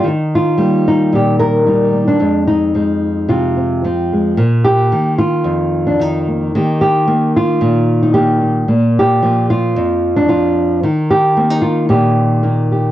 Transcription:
0.04 2.16 D#3 medium
0.04 0.86 D#4 medium
0.35 1.14 F4 medium
0.57 1.65 G3 medium
0.57 1.91 A#3 soft
0.88 1.67 D#4 medium
1.12 2.17 A#2 medium
1.12 1.39 G4 medium
1.39 2.20 A#4 loud
1.66 2.17 G3 medium
1.66 2.07 D#4 medium
1.92 2.16 A#3 soft
2.07 2.47 D4 medium
2.19 4.37 F2 medium
2.19 2.74 G#3 soft
2.47 3.57 D#4 medium
2.75 3.83 F3 soft
2.75 4.11 G#3 soft
3.29 3.83 C3 medium
3.29 4.38 F4 medium
3.57 3.84 C4 soft
3.85 4.35 F3 soft
3.85 4.38 C4 soft
4.13 4.38 G#3 soft
4.37 4.91 A#2 medium
4.37 6.28 A#3 soft
4.64 5.18 G4 loud
4.92 5.98 D#3 medium
5.18 6.40 F4 loud
5.44 6.53 F2 medium
5.87 6.01 D4 medium
5.99 6.53 D#3 soft
5.99 6.54 D#4 medium
6.28 6.55 A#3 soft
6.55 8.69 D#3 medium
6.55 7.07 A#3 soft
6.55 7.07 D#4 medium
6.55 6.80 G4 medium
6.81 7.34 G4 loud
7.08 8.13 A#3 medium
7.08 8.02 D#4 soft
7.36 8.13 F4 loud
7.61 8.67 A#2 medium
8.03 8.41 D#4 medium
8.14 8.68 A#3 medium
8.14 8.68 G4 medium
8.42 8.65 D#4 soft
8.68 9.75 A#2 medium
8.68 9.23 A#3 medium
8.99 9.50 G4 medium
9.22 10.27 F3 medium
9.22 11.36 A#3 soft
9.50 10.28 F4 loud
9.76 10.83 F2 medium
10.16 10.83 D4 medium
10.29 10.79 F3 medium
10.29 10.83 F4 medium
10.83 12.92 D#3 medium
10.83 11.37 D#4 medium
11.11 11.61 G4 loud
11.37 12.42 A#3 medium
11.37 11.50 C4 soft
11.50 12.43 D#4 soft
11.62 11.89 F4 medium
11.89 12.92 A#2 medium
11.89 12.71 G4 medium
12.43 12.92 A#3 medium
12.43 12.92 D#4 soft
12.72 12.92 G4 soft

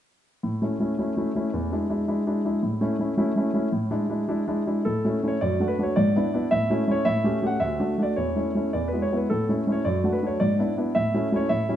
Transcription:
0.43 0.61 A2 soft
0.62 0.75 A3 soft
0.62 0.76 C#4 soft
0.62 0.76 E4 soft
0.80 0.93 A3 soft
0.80 0.94 C#4 soft
0.80 0.94 E4 soft
0.99 1.12 A3 soft
0.99 1.12 C#4 soft
0.99 1.12 E4 soft
1.17 1.30 A3 soft
1.17 1.31 C#4 soft
1.17 1.31 E4 soft
1.36 1.49 A3 soft
1.36 1.49 C#4 soft
1.36 1.49 E4 soft
1.53 1.72 E2 soft
1.72 1.85 G#3 soft
1.72 1.86 D4 soft
1.72 1.86 E4 soft
1.90 2.03 G#3 soft
1.90 2.03 D4 soft
1.90 2.04 E4 soft
2.08 2.22 G#3 soft
2.08 2.22 D4 soft
2.08 2.22 E4 soft
2.27 2.40 G#3 soft
2.27 2.40 D4 soft
2.27 2.41 E4 soft
2.45 2.58 G#3 soft
2.45 2.59 D4 soft
2.45 2.59 E4 soft
2.63 2.81 A2 soft
2.81 2.95 A3 soft
2.81 2.95 C#4 soft
2.81 2.95 E4 soft
2.99 3.13 A3 soft
2.99 3.13 C#4 soft
2.99 3.13 E4 soft
3.17 3.31 A3 soft
3.17 3.31 C#4 soft
3.17 3.31 E4 soft
3.36 3.49 A3 soft
3.36 3.49 C#4 soft
3.36 3.50 E4 soft
3.54 3.67 A3 soft
3.54 3.67 C#4 soft
3.54 3.68 E4 soft
3.72 3.90 A2 soft
3.91 4.04 G#3 soft
3.91 4.04 D4 soft
3.91 4.05 E4 soft
4.09 4.23 G#3 soft
4.09 4.23 D4 soft
4.09 4.24 E4 soft
4.28 4.42 G#3 soft
4.28 4.42 D4 soft
4.28 4.43 E4 soft
4.48 4.61 G#3 soft
4.48 4.61 D4 soft
4.48 4.62 E4 soft
4.67 4.80 G#3 soft
4.67 4.81 D4 soft
4.67 4.81 E4 soft
4.85 5.04 A2 soft
4.85 5.27 A4 medium
5.05 5.18 A3 soft
5.05 5.18 C#4 soft
5.05 5.18 E4 soft
5.23 5.36 A3 soft
5.23 5.37 C#4 soft
5.23 5.37 E4 soft
5.28 5.41 C#5 soft
5.41 5.60 F#2 soft
5.41 5.66 D5 medium
5.60 5.73 A3 soft
5.60 5.74 D4 soft
5.60 5.74 F#4 soft
5.68 5.82 B4 soft
5.79 5.92 A3 soft
5.79 5.92 D4 soft
5.79 5.92 F#4 soft
5.83 5.97 C#5 soft
5.96 6.15 G#2 soft
5.96 6.47 D5 medium
6.16 6.29 B3 soft
6.16 6.29 D4 soft
6.16 6.29 E4 soft
6.34 6.47 B3 soft
6.34 6.47 D4 soft
6.34 6.47 E4 soft
6.51 6.69 A2 soft
6.51 6.92 E5 medium
6.70 6.83 A3 soft
6.70 6.83 C#4 soft
6.70 6.83 E4 soft
6.88 7.01 A3 soft
6.88 7.01 C#4 soft
6.88 7.01 E4 soft
6.88 7.05 C#5 medium
7.05 7.23 A2 soft
7.05 7.43 E5 medium
7.24 7.37 A3 soft
7.24 7.38 C#4 soft
7.24 7.38 G4 soft
7.42 7.56 A3 soft
7.42 7.56 C#4 soft
7.42 7.56 G4 soft
7.47 7.61 F#5 medium
7.60 7.79 D2 soft
7.60 8.03 E5 medium
7.80 7.93 A3 soft
7.80 7.93 D4 soft
7.80 7.94 F#4 soft
7.98 8.12 A3 soft
7.98 8.12 D4 soft
7.98 8.13 F#4 soft
8.03 8.17 D5 soft
8.16 8.36 E2 soft
8.16 8.74 C#5 soft
8.36 8.50 A3 soft
8.36 8.50 C#4 soft
8.36 8.50 E4 soft
8.55 8.69 A3 soft
8.55 8.69 C#4 soft
8.55 8.69 E4 soft
8.73 8.92 E2 soft
8.73 8.88 D5 soft
8.88 9.02 B4 soft
8.93 9.07 G#3 soft
8.93 9.07 B3 soft
8.93 9.07 E4 soft
9.02 9.16 C#5 soft
9.12 9.25 G#3 soft
9.12 9.26 B3 soft
9.12 9.26 E4 soft
9.16 9.31 B4 soft
9.30 9.49 A2 soft
9.30 9.55 A4 medium
9.49 9.63 A3 soft
9.49 9.63 C#4 soft
9.49 9.63 E4 soft
9.67 9.81 A3 soft
9.67 9.81 C#4 soft
9.67 9.81 E4 soft
9.72 9.86 C#5 soft
9.85 10.04 F#2 soft
9.85 10.10 D5 medium
10.04 10.17 A3 soft
10.04 10.18 D4 soft
10.04 10.18 F#4 soft
10.13 10.27 B4 soft
10.23 10.36 A3 soft
10.23 10.36 D4 soft
10.23 10.37 F#4 soft
10.23 10.41 C#5 soft
10.40 10.59 G#2 soft
10.40 10.73 D5 medium
10.59 10.72 B3 soft
10.59 10.72 D4 soft
10.59 10.73 E4 soft
10.77 10.91 B3 soft
10.77 10.91 D4 soft
10.77 10.91 E4 soft
10.95 11.13 A2 soft
10.95 11.36 E5 medium
11.14 11.27 A3 soft
11.14 11.27 C#4 soft
11.14 11.28 E4 soft
11.32 11.45 A3 soft
11.32 11.46 C#4 soft
11.32 11.46 E4 soft
11.32 11.50 C#5 medium
11.49 11.68 A2 soft
11.49 11.74 E5 medium
11.69 11.76 G3 soft
11.69 11.76 C#4 soft
11.69 11.76 E4 soft

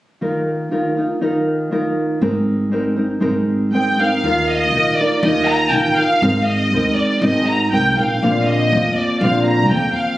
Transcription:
0.21 0.71 D#3 soft
0.21 0.71 D#4 medium
0.21 0.70 F4 medium
0.21 0.72 A#4 soft
0.71 0.97 D#3 soft
0.71 0.97 D#4 soft
0.71 0.96 F4 soft
0.71 0.95 A#4 soft
0.96 1.20 D#4 soft
0.96 1.21 F4 soft
0.96 1.21 A#4 soft
1.21 1.71 D#3 medium
1.21 1.72 D#4 medium
1.21 1.71 F4 medium
1.21 1.72 A#4 medium
1.71 2.21 D#3 soft
1.71 2.21 D#4 medium
1.71 2.21 F4 medium
1.71 2.22 A#4 medium
2.21 3.20 G#1 medium
2.21 2.70 G#3 medium
2.21 2.71 C4 medium
2.21 2.71 D#4 medium
2.21 2.72 A#4 medium
2.71 2.97 G#3 soft
2.71 2.96 C4 soft
2.71 2.97 D#4 medium
2.71 2.95 A#4 medium
2.96 3.20 C4 soft
2.96 3.20 D#4 soft
2.96 3.21 A#4 soft
3.20 4.22 G#1 medium
3.20 3.72 G#3 medium
3.20 3.73 C4 medium
3.20 3.74 D#4 medium
3.20 3.74 A#4 medium
3.73 3.99 G#3 medium
3.73 3.99 C4 medium
3.73 3.99 D#4 medium
3.73 3.98 A#4 medium
3.73 3.97 G5 medium
3.99 4.25 C4 soft
3.99 4.24 D#4 soft
3.99 4.24 A#4 soft
3.99 4.50 F5 medium
4.24 4.73 D#2 medium
4.24 4.73 D#3 medium
4.24 4.74 D#4 medium
4.24 4.74 F4 medium
4.24 4.76 A#4 medium
4.48 4.99 D#5 medium
4.73 4.90 A#1 medium
4.73 5.00 D#3 soft
4.73 5.00 D#4 soft
4.73 5.00 F4 medium
4.73 4.99 A#4 medium
4.97 5.24 F4 soft
4.97 5.25 A#4 soft
4.97 5.23 D5 medium
5.02 5.24 D#4 soft
5.22 5.73 D#2 medium
5.22 5.72 D#3 medium
5.22 5.73 D#4 medium
5.22 5.72 F4 medium
5.22 5.46 D#5 medium
5.26 5.74 A#4 medium
5.47 5.72 A#5 medium
5.70 5.90 A1 medium
5.70 5.98 D#3 soft
5.70 5.98 D#4 soft
5.70 5.97 F4 medium
5.70 5.97 G5 medium
5.74 5.96 A#4 medium
5.95 6.23 F4 soft
5.95 6.22 A#4 soft
5.95 6.46 F5 medium
6.00 6.22 D#4 soft
6.22 6.74 G#1 medium
6.22 6.72 G#3 medium
6.22 6.73 C4 medium
6.22 6.72 D#4 medium
6.22 6.74 A#4 medium
6.44 6.95 D#5 medium
6.72 6.89 D#2 medium
6.72 7.22 G#3 soft
6.72 7.23 C4 medium
6.72 7.22 D#4 medium
6.72 7.24 A#4 medium
6.93 7.20 D5 medium
7.20 7.71 G#1 medium
7.20 7.70 G#3 medium
7.20 7.72 C4 medium
7.20 7.71 D#4 medium
7.20 7.44 D#5 medium
7.25 7.72 A#4 medium
7.45 7.71 A#5 medium
7.71 7.95 C2 medium
7.71 7.97 G#3 soft
7.71 7.97 C4 soft
7.71 7.97 D#4 medium
7.71 7.96 A#4 medium
7.71 7.89 G5 medium
7.92 8.47 F5 medium
7.92 7.98 G5 medium
7.97 8.20 A#1 medium
7.97 8.23 C4 soft
7.97 8.23 D#4 soft
7.97 8.22 A#4 soft
8.22 8.74 A#1 medium
8.22 8.73 A#2 medium
8.22 8.73 D3 medium
8.22 8.72 F3 medium
8.22 8.73 A#3 medium
8.22 8.73 C4 medium
8.22 8.73 F4 medium
8.45 8.96 D#5 medium
8.72 8.89 F2 medium
8.72 9.22 F3 medium
8.72 9.22 A#3 soft
8.72 9.22 C4 medium
8.72 9.22 F4 medium
8.95 9.21 D5 medium
9.19 9.71 A#1 medium
9.19 9.71 A#2 medium
9.19 9.71 D3 medium
9.19 9.70 A#3 medium
9.19 9.71 F4 medium
9.19 9.44 F5 medium
9.23 9.69 F3 medium
9.23 9.70 C4 medium
9.45 9.68 A#5 medium
9.69 9.87 F2 medium
9.69 10.18 F3 soft
9.69 10.18 A#3 medium
9.69 10.18 C4 medium
9.69 10.18 F4 medium
9.69 9.95 G5 medium
9.94 10.18 F5 medium

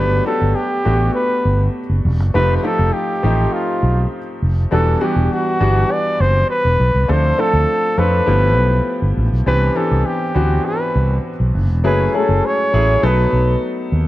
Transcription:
0.00 0.19 G1 medium
0.00 0.20 F#3 medium
0.00 0.20 A3 medium
0.00 0.20 B3 medium
0.00 0.21 D4 medium
0.00 0.21 G4 medium
0.00 0.25 B4 loud
0.26 0.73 A3 medium
0.26 0.74 B3 medium
0.26 0.74 D4 medium
0.26 0.73 F#4 medium
0.26 0.74 G4 medium
0.26 0.57 A4 medium
0.42 0.53 G1 medium
0.56 1.14 G4 medium
0.85 1.08 A1 medium
0.85 1.80 A3 medium
0.85 1.80 B3 medium
0.85 1.80 D4 medium
0.85 1.80 F#4 medium
0.85 1.81 G4 medium
1.14 1.70 B4 medium
1.45 1.67 G1 medium
1.90 2.01 F#1 medium
2.05 2.20 E1 medium
2.20 2.31 F#1 medium
2.34 2.57 F1 medium
2.34 2.58 F3 medium
2.34 2.58 A3 medium
2.34 2.58 C4 medium
2.34 2.58 D#4 medium
2.34 2.58 G4 medium
2.34 2.56 B4 loud
2.57 2.66 B4 medium
2.63 3.11 F3 medium
2.63 3.11 A3 medium
2.63 3.11 C4 medium
2.63 3.11 D#4 medium
2.63 3.12 G4 medium
2.63 2.95 A4 medium
2.79 2.90 F1 medium
2.93 3.54 G4 medium
3.23 3.46 A1 medium
3.23 4.18 F3 medium
3.23 4.18 A3 medium
3.23 4.18 C4 medium
3.23 4.18 D#4 medium
3.23 4.18 G4 medium
3.53 4.12 F4 medium
3.83 4.05 B1 medium
4.42 4.64 F1 medium
4.71 4.94 E1 medium
4.71 4.95 E3 medium
4.71 4.95 G3 medium
4.71 4.95 B3 medium
4.71 4.95 D4 medium
4.71 4.96 F#4 medium
4.71 5.04 A4 medium
5.00 5.48 E3 medium
5.00 5.48 G3 medium
5.00 5.48 B3 medium
5.00 5.48 D4 medium
5.00 5.48 F#4 medium
5.00 5.34 G4 medium
5.16 5.27 E1 medium
5.32 5.93 F#4 medium
5.60 5.83 G1 medium
5.60 6.55 E3 medium
5.60 6.55 G3 medium
5.60 6.55 B3 medium
5.60 6.55 D4 medium
5.60 6.55 F#4 medium
5.92 6.22 D5 medium
6.20 6.42 F#1 medium
6.20 6.50 C5 loud
6.50 7.12 B4 medium
6.65 6.76 E1 medium
6.80 6.91 B1 medium
6.94 7.05 C2 medium
7.08 7.31 D2 medium
7.08 7.32 F3 medium
7.08 7.32 A3 medium
7.08 7.33 C4 medium
7.08 7.33 D4 medium
7.08 7.33 A4 medium
7.08 7.42 C5 medium
7.38 7.86 F3 medium
7.38 7.86 A3 medium
7.38 7.86 C4 medium
7.38 7.86 D4 medium
7.38 7.86 A4 medium
7.38 8.00 A4 medium
7.53 7.65 D2 medium
7.98 8.20 F2 medium
7.98 8.25 F3 medium
7.98 8.25 A3 medium
7.98 8.28 C4 medium
7.98 8.28 D4 medium
7.98 8.28 A4 medium
7.98 9.17 B4 medium
8.26 8.57 G1 medium
8.26 9.22 F3 medium
8.26 9.22 A3 medium
8.26 9.22 B3 medium
8.26 9.23 E4 medium
8.26 9.23 G4 medium
8.57 8.79 B1 medium
9.02 9.13 G1 medium
9.17 9.28 A1 medium
9.32 9.43 B1 medium
9.46 9.69 C2 medium
9.46 9.70 E3 medium
9.46 9.70 B3 medium
9.46 9.70 C4 medium
9.46 9.70 D4 medium
9.46 9.71 G4 medium
9.46 9.78 B4 loud
9.75 10.23 E3 medium
9.75 10.23 B3 medium
9.75 10.23 C4 medium
9.75 10.23 D4 medium
9.75 10.24 G4 medium
9.75 10.07 A4 medium
9.91 10.02 C2 medium
10.06 10.67 G4 medium
10.35 10.58 D2 medium
10.35 11.30 E3 medium
10.35 11.30 B3 medium
10.35 11.30 C4 medium
10.35 11.30 D4 medium
10.35 11.30 F#4 medium
10.65 11.25 B4 medium
10.96 11.18 C2 medium
11.40 11.51 B1 medium
11.55 11.69 F#1 medium
11.69 11.84 E1 medium
11.84 12.06 F#1 medium
11.84 12.07 F#3 medium
11.84 12.08 A3 medium
11.84 12.08 C#4 medium
11.84 12.08 E4 medium
11.84 12.08 G#4 medium
11.84 12.17 B4 medium
12.13 12.61 F#3 medium
12.13 12.20 G#3 soft
12.13 12.61 C#4 medium
12.13 12.61 E4 medium
12.13 12.61 G#4 medium
12.13 12.47 A4 medium
12.20 12.64 A3 medium
12.29 12.40 F#1 medium
12.46 13.06 C#5 loud
12.73 12.96 A1 medium
12.73 13.01 F#3 medium
12.73 13.01 A3 medium
12.73 13.03 C#4 medium
12.73 13.03 E4 medium
12.73 13.03 G#4 medium
13.02 13.25 B1 medium
13.02 13.97 F#3 medium
13.02 13.97 A3 medium
13.02 13.98 B3 medium
13.02 13.98 D#4 medium
13.02 13.98 A4 medium
13.02 13.63 B4 medium
13.33 13.55 B1 medium
13.92 14.08 D#2 medium

